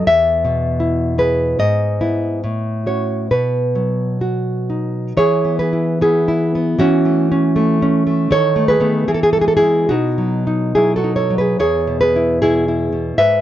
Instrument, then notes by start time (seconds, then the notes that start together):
nylon-string guitar
0.07 E2 E5
0.45 B2
0.80 E4
1.18 G#4 B4
1.59 G#2 D#5
2.01 B3 E4
2.44 A2
2.86 C#4 F#4 C#5
3.31 B2 B4
3.75 F#3
4.21 F#4
4.70 D#4
5.17 E3 G#4 C#5
5.45 B3
5.59 G#4 B4
5.73 E4
6.01 B3 E4 G#4
6.28 E4
6.55 B3
6.79 E3 C#4 F#4
7.05 A3
7.32 C#4
7.56 A3
7.82 C#4
8.07 A3
8.31 D#3 A4 C#5
8.56 A3
8.68 G#4 B4
8.80 A3 B3
9.08 E3 G#4
9.14 A4
9.23 G#4
9.33 A4
9.37 G#3
9.41 G#4
9.48 A4
9.57 E4 G#4
9.62 G#3 B3
9.89 B2 D#4 F#4
10.18 F#3
10.47 D#4
10.75 F#3 E4 G#4
10.96 F#4 A4
11.04 D#4
11.16 A4 C#5
11.30 F#3
11.38 G#4 B4
11.59 E2 G#4 C#5
11.87 B2
12.01 G#4 B4
12.16 E4
12.42 B2 E4 G#4
12.68 E4
12.93 B2
13.18 G#2 B4 E5